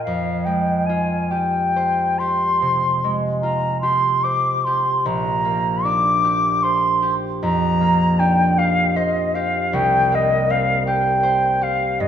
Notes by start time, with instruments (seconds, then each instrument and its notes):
Already playing: harp F4
0.04 harp F2, flute F5
0.45 harp G#3, flute G5
0.86 harp F4, flute G#5
1.30 harp G4, flute G5
1.76 harp C5
2.18 harp G4, flute C6
2.62 harp C3
3.04 harp G#3
3.42 harp F4, flute A#5
3.81 harp G4, flute C6
4.23 harp C5, flute D6
4.64 harp G4, flute C6
5.05 harp A#1, flute A#5
5.45 harp A#3
5.85 harp D4, flute D6
6.24 harp G4
6.63 harp C5, flute C6
7.02 harp G4
7.42 harp F2, flute A#5
7.81 harp A#3
8.19 harp D4, flute G5
8.58 harp G4, flute F5
8.96 harp C5, flute D#5
9.34 harp G4, flute F5
9.73 harp C2, flute G5
10.12 harp A#3, flute D#5
10.50 harp C4, flute F5
10.87 harp G4, flute G5
11.23 harp C5
11.61 harp G4, flute F5
12.00 harp G2, flute D#5